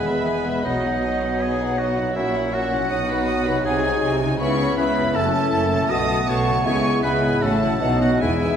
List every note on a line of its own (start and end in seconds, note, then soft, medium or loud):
0.00 0.65 E1 soft
0.00 0.65 E2 soft
0.00 0.57 E3 soft
0.00 0.64 G#3 soft
0.00 0.66 G#3 soft
0.00 0.50 B3 soft
0.00 0.60 B3 soft
0.00 0.63 B3 soft
0.00 0.62 G#4 soft
0.00 0.59 B4 soft
0.00 0.62 B4 medium
0.00 0.64 E5 soft
0.00 0.62 B5 medium
0.07 0.26 B3 soft
0.07 0.26 B4 soft
0.07 0.26 E5 soft
0.26 0.46 G#3 soft
0.26 0.45 G#4 soft
0.26 0.46 G#5 soft
0.45 2.08 B2 soft
0.45 0.65 B3 soft
0.45 0.65 B4 soft
0.45 0.65 E5 soft
0.51 2.10 B3 soft
0.56 2.05 F#4 soft
0.63 2.16 B1 medium
0.63 2.15 B2 soft
0.63 3.60 F#3 soft
0.63 1.78 F#3 soft
0.63 2.12 B3 medium
0.63 1.76 B3 soft
0.63 0.82 D#4 soft
0.63 1.43 D#4 medium
0.63 0.83 F#4 soft
0.63 1.40 D#5 soft
0.63 0.83 D#5 soft
0.63 1.76 F#5 soft
0.84 1.03 B3 soft
0.84 1.01 D#4 soft
0.84 1.04 F#5 soft
1.03 1.21 D#4 soft
1.03 1.22 F#4 soft
1.03 1.22 D#5 soft
1.22 1.41 B3 soft
1.22 1.39 D#4 soft
1.22 1.41 F#5 soft
1.40 1.58 D#4 soft
1.40 1.58 F#4 soft
1.40 1.79 G#4 medium
1.40 1.58 D#5 soft
1.40 1.78 G#5 medium
1.59 1.78 B3 soft
1.59 1.77 D#4 soft
1.59 1.78 F#5 soft
1.77 2.15 F#3 soft
1.77 2.14 B3 soft
1.77 1.95 D#4 soft
1.77 2.15 F#4 soft
1.77 1.97 F#4 soft
1.77 1.96 D#5 soft
1.77 2.15 F#5 soft
1.96 2.83 A#2 soft
1.96 2.15 B3 soft
1.96 2.15 D#4 soft
1.96 2.16 F#5 soft
2.02 2.86 E4 soft
2.06 2.81 F#4 soft
2.11 2.89 C#4 medium
2.11 2.90 C#5 soft
2.15 2.91 A#1 soft
2.15 2.91 A#2 soft
2.15 2.52 F#3 medium
2.15 2.33 A#3 soft
2.15 2.52 C#4 soft
2.15 2.55 E4 medium
2.15 2.33 F#4 soft
2.15 2.53 E5 medium
2.15 2.33 E5 soft
2.15 2.53 F#5 soft
2.34 2.53 C#4 soft
2.34 2.53 E4 soft
2.34 2.54 F#5 soft
2.52 2.90 F#3 soft
2.52 2.72 A#3 soft
2.52 2.91 C#4 soft
2.52 2.72 F#4 soft
2.52 3.64 F#4 medium
2.52 2.72 E5 soft
2.52 3.63 F#5 medium
2.52 2.90 F#5 medium
2.72 3.58 B2 soft
2.72 2.91 C#4 soft
2.72 2.91 E4 soft
2.72 2.91 F#5 soft
2.77 3.50 D#4 soft
2.82 3.55 F#4 soft
2.86 3.63 B2 soft
2.86 3.63 D#4 soft
2.86 3.64 D#4 soft
2.86 3.65 B4 soft
2.91 3.64 B1 medium
2.91 3.64 F#3 soft
2.91 3.08 B3 soft
2.91 3.08 F#4 soft
2.91 3.66 F#5 medium
2.91 3.08 D#6 soft
3.09 3.28 D#4 soft
3.09 3.28 B4 soft
3.09 3.28 B5 soft
3.26 3.47 B3 soft
3.26 3.47 F#4 soft
3.26 3.46 D#6 soft
3.46 4.32 C3 soft
3.46 3.64 D#4 soft
3.46 3.65 B4 soft
3.46 3.65 B5 soft
3.52 4.35 D#4 soft
3.56 4.37 F#4 soft
3.61 4.12 D#4 medium
3.61 5.14 G#4 soft
3.61 4.38 G#5 medium
3.65 3.98 C2 medium
3.65 3.98 C3 soft
3.65 4.13 F#3 medium
3.65 4.22 F#3 medium
3.65 4.22 D#4 medium
3.65 3.83 D#4 soft
3.65 3.83 F#4 soft
3.65 4.13 G#4 medium
3.65 4.14 D#5 soft
3.65 3.82 G#5 medium
3.83 4.02 D#4 soft
3.83 4.01 F#4 soft
3.83 4.01 G#5 soft
4.02 4.35 C2 medium
4.02 4.35 C3 medium
4.02 4.20 D#4 soft
4.02 4.20 F#4 soft
4.02 4.19 G#5 medium
4.20 5.08 C#3 soft
4.20 4.40 D#4 soft
4.20 4.40 F#4 soft
4.20 4.39 G#5 soft
4.26 5.01 C#4 soft
4.31 5.05 E4 soft
4.35 4.76 B3 soft
4.35 5.14 B4 soft
4.39 4.73 C#2 medium
4.39 4.73 C#3 medium
4.39 4.75 B3 medium
4.39 4.75 C#4 soft
4.39 4.58 C#4 soft
4.39 4.58 E4 soft
4.39 4.76 E4 soft
4.39 4.75 C#5 medium
4.39 4.75 E5 soft
4.39 4.57 B5 soft
4.39 4.77 C#6 medium
4.59 4.76 C#4 soft
4.59 4.76 E4 soft
4.59 4.77 B5 soft
4.77 5.10 C#2 medium
4.77 5.11 C#3 medium
4.77 5.14 B3 medium
4.77 5.17 B3 medium
4.77 4.95 C#4 soft
4.77 5.14 C#4 soft
4.77 4.95 E4 medium
4.77 5.14 E4 medium
4.77 5.16 B4 medium
4.77 5.14 E5 medium
4.77 5.14 B5 medium
4.77 4.95 B5 soft
4.96 5.82 F#2 medium
4.96 5.14 C#4 medium
4.96 5.14 E4 soft
4.96 5.15 B5 soft
5.02 5.85 C#4 soft
5.06 5.87 E4 soft
5.11 5.84 A4 soft
5.11 5.88 E5 medium
5.15 5.48 F#1 medium
5.15 5.48 F#2 medium
5.15 5.88 A3 medium
5.15 5.89 A3 medium
5.15 5.33 C#4 soft
5.15 5.91 C#4 soft
5.15 5.88 E4 medium
5.15 5.33 E4 medium
5.15 5.92 A4 loud
5.15 5.31 A5 medium
5.15 5.90 A5 medium
5.33 5.51 C#4 soft
5.33 5.51 E4 soft
5.33 5.50 A5 medium
5.52 5.86 F#1 medium
5.52 5.86 F#2 medium
5.52 5.70 C#4 soft
5.52 5.70 E4 soft
5.52 5.69 A5 medium
5.70 6.58 B2 medium
5.70 5.90 C#4 soft
5.70 5.90 E4 soft
5.70 5.87 A5 soft
5.76 6.51 B3 soft
5.81 6.63 F#4 soft
5.89 6.23 B1 medium
5.89 6.23 B2 medium
5.89 6.64 A3 medium
5.89 6.08 B3 soft
5.89 6.65 B3 medium
5.89 6.65 F#4 medium
5.89 6.07 F#4 soft
5.89 6.30 D#5 medium
5.89 6.67 F#5 medium
5.89 6.06 A5 medium
5.89 6.27 D#6 medium
6.07 6.26 B3 soft
6.07 6.26 F#4 soft
6.07 6.26 A5 soft
6.27 6.61 B1 medium
6.27 6.61 B2 medium
6.27 6.46 B3 medium
6.27 6.46 F#4 medium
6.27 6.65 C#5 medium
6.27 6.45 A5 medium
6.27 6.64 C#6 medium
6.46 7.35 C#3 soft
6.46 6.65 B3 soft
6.46 6.65 F#4 medium
6.46 6.65 A5 soft
6.52 7.37 B3 soft
6.57 7.32 E4 soft
6.61 7.02 B3 medium
6.61 7.41 G#4 soft
6.61 7.03 E5 soft
6.61 6.83 G#5 medium
6.61 7.02 C#6 medium
6.65 6.99 C#2 medium
6.65 6.99 C#3 medium
6.65 7.04 G#3 medium
6.65 7.03 G#3 medium
6.65 6.84 B3 medium
6.65 7.03 E4 medium
6.65 6.84 E4 medium
6.65 7.02 C#5 medium
6.84 7.03 B3 soft
6.84 7.03 E4 soft
6.84 7.01 G#5 soft
7.02 7.38 C#2 medium
7.02 7.38 C#3 medium
7.02 7.43 G#3 medium
7.02 7.42 G#3 medium
7.02 7.43 B3 medium
7.02 7.22 B3 soft
7.02 7.21 E4 soft
7.02 7.42 E4 medium
7.02 7.43 B4 medium
7.02 7.41 E5 medium
7.02 7.21 G#5 medium
7.02 7.41 B5 medium
7.23 7.74 A2 soft
7.23 7.42 B3 soft
7.23 7.41 E4 soft
7.23 7.42 G#5 medium
7.29 7.76 C#4 soft
7.33 7.78 E4 soft
7.38 7.80 A3 medium
7.38 7.76 F#4 soft
7.42 7.77 A1 medium
7.42 7.77 A2 medium
7.42 7.80 F#3 medium
7.42 7.80 F#3 soft
7.42 7.61 C#4 soft
7.42 7.61 E4 soft
7.42 7.81 E4 soft
7.42 8.00 A4 medium
7.42 7.83 E5 medium
7.42 7.61 F#5 soft
7.42 8.01 A5 medium
7.62 8.14 B2 medium
7.62 7.81 C#4 soft
7.62 7.81 E4 soft
7.62 7.79 F#5 soft
7.68 8.08 B3 soft
7.72 8.19 D#4 soft
7.77 8.23 F#3 soft
7.77 8.21 F#4 soft
7.77 8.00 F#5 medium
7.81 8.17 B1 medium
7.81 8.17 B2 medium
7.81 8.21 F#3 medium
7.81 7.99 B3 medium
7.81 8.21 B3 soft
7.81 7.99 D#4 soft
7.81 8.22 D#4 soft
7.81 8.23 D#5 soft
8.00 8.57 E3 soft
8.00 8.20 B3 soft
8.00 8.21 D#4 soft
8.00 8.21 F#4 medium
8.00 8.09 F#5 medium
8.00 8.21 F#5 soft
8.09 8.57 B3 soft
8.13 8.57 E4 soft
8.18 8.57 E2 medium
8.18 8.41 B3 medium
8.18 8.41 E4 medium
8.18 8.57 E4 medium
8.18 8.57 G#4 soft
8.18 8.40 G#5 medium
8.22 8.57 E1 medium
8.22 8.57 E2 soft
8.22 8.57 G#3 medium
8.22 8.57 B3 soft
8.22 8.57 E4 medium
8.22 8.57 E5 medium
8.41 8.57 B3 soft
8.41 8.57 E4 soft
8.41 8.57 G#5 soft